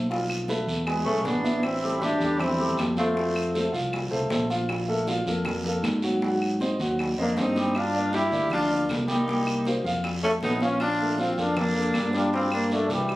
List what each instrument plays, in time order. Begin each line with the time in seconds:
Already playing: fingered electric bass B1
0.10 grand piano F3 F4 F5, high bongo, high conga, long guiro
0.29 high conga, claves
0.48 grand piano A3 A4 B4, high bongo, high conga, short guiro
0.67 fingered electric bass E2, high bongo, high conga, short guiro
0.86 grand piano G#3 G#4 B4, high bongo, high conga, long guiro, claves
1.05 fingered electric bass B1, grand piano G#3 G#4 B4, trombone A3, tenor saxophone C#4, high bongo, high conga
1.24 fingered electric bass A1, trombone B3, tenor saxophone D4, high bongo, low bongo, high conga, short guiro
1.44 grand piano E3 E4 E5, high bongo, high conga, short guiro
1.63 trombone C4, tenor saxophone E4, high bongo, high conga, long guiro, claves
1.83 grand piano G3 G4 A4, high bongo, high conga
2.01 grand piano E3 E4 E5, trombone D4, tenor saxophone G4, high bongo, high conga, short guiro
2.20 fingered electric bass E2, grand piano G3 G4 A4, high bongo, high conga, short guiro
2.40 trombone C4, tenor saxophone E4, high bongo, high conga, low conga, long guiro, claves
2.59 grand piano G3 G4 A4, high bongo, high conga, low conga
2.78 fingered electric bass F2, high bongo, low bongo, high conga, short guiro, claves
2.97 grand piano F3 F4 F5, trombone A3, tenor saxophone C4, high conga, short guiro
3.16 grand piano F3 F4 F5, high bongo, long guiro
3.36 high conga, claves
3.55 grand piano A3 A4 C5, high bongo, high conga, short guiro
3.72 fingered electric bass C2, grand piano F3 F4 F5, high bongo, high conga, short guiro
3.93 high bongo, high conga, long guiro, claves
4.11 fingered electric bass C2, grand piano A3 A4 C5, high bongo, high conga
4.30 fingered electric bass A#1, grand piano A3 A4 C5, high bongo, low bongo, high conga, short guiro
4.50 grand piano F3 F4 F5, high bongo, high conga, short guiro
4.69 high bongo, long guiro, claves
4.88 grand piano A3 A4 A#4, high bongo, high conga
5.07 grand piano F3 F4 F5, high bongo, high conga, short guiro
5.26 fingered electric bass F2, grand piano A#3 A4 A#4, high bongo, high conga, short guiro
5.45 high bongo, high conga, low conga, long guiro, claves
5.65 grand piano A#3 A4 A#4, high bongo, high conga
5.83 fingered electric bass G#2, high bongo, low bongo, high conga, short guiro, claves
6.02 grand piano F#3 F#4 F#5, high conga, short guiro
6.22 grand piano F#3 F#4 F#5, high bongo, high conga, long guiro
6.42 high conga, claves
6.60 grand piano C4 C5 D#5, high bongo, high conga, short guiro
6.79 fingered electric bass D#2, grand piano F#3 F#4 F#5, high bongo, high conga, short guiro
6.99 high bongo, high conga, long guiro, claves
7.18 fingered electric bass F2, trombone A#3, grand piano C4 C5 D#5, tenor saxophone D4, high bongo, high conga
7.37 fingered electric bass G2, grand piano C4 C5 D#5, trombone C4, tenor saxophone D#4, high bongo, low bongo, high conga, short guiro
7.56 grand piano G3 G4 G5, high bongo, high conga, short guiro
7.75 trombone D4, tenor saxophone F4, high bongo, high conga, long guiro, claves
7.94 grand piano A#3 A#4 D5, high bongo, high conga
8.13 grand piano G3 G4 G5, trombone E4, tenor saxophone G4, high bongo, high conga, short guiro
8.31 fingered electric bass D2, grand piano A#3 A#4 D5, high bongo, high conga, short guiro
8.50 trombone D4, tenor saxophone F4, high bongo, high conga, low conga, long guiro, claves
8.70 grand piano A#3 A#4 D5, high bongo, high conga, low conga
8.89 fingered electric bass C2, high bongo, low bongo, high conga, short guiro, claves
9.07 grand piano G3 G4 G5, trombone A#3, tenor saxophone D#4, high conga, short guiro
9.27 grand piano G3 G4 G5, high bongo, high conga, long guiro
9.47 high conga, claves
9.65 grand piano A#3 A#4 C5, high bongo, high conga, short guiro
9.84 fingered electric bass F2, grand piano F3 F4 F5, high bongo, high conga, short guiro
10.03 high bongo, high conga, long guiro, claves
10.22 grand piano A3 A4 C#5, trombone A3, tenor saxophone C#4, high bongo, high conga
10.41 fingered electric bass A#1, grand piano A3 A4 C#5, trombone B3, tenor saxophone D#4, high bongo, low bongo, high conga, short guiro
10.60 grand piano F3 F4 F5, trombone C#4, tenor saxophone F4, high bongo, high conga, short guiro
10.79 trombone D4, tenor saxophone F4, high bongo, high conga, long guiro, claves
10.99 grand piano A3 A4 A#4, high bongo, high conga
11.18 grand piano F3 F4 F5, trombone C4, tenor saxophone F4, high bongo, high conga, short guiro
11.37 fingered electric bass F2, grand piano A#3 A4 A#4, trombone D4, tenor saxophone F4, high bongo, high conga, short guiro
11.57 trombone A#3, tenor saxophone D4, high bongo, high conga, low conga, long guiro, claves
11.76 grand piano A#3 A4 A#4, high bongo, high conga
11.94 fingered electric bass G2, high bongo, low bongo, high conga, short guiro, claves
12.13 grand piano G3 G4 G5, trombone D4, tenor saxophone F4, high conga, short guiro
12.32 grand piano G3 G4 G5, trombone C4, tenor saxophone F4, high bongo, high conga, long guiro
12.51 trombone A#3, tenor saxophone D4, high conga, claves
12.70 trombone A3, grand piano A#3 A#4 D5, tenor saxophone D4, high bongo, high conga, short guiro
12.89 fingered electric bass C2, trombone E3, tenor saxophone G3, grand piano G3 G4 G5, high bongo, high conga, short guiro
13.09 high bongo, high conga, long guiro, claves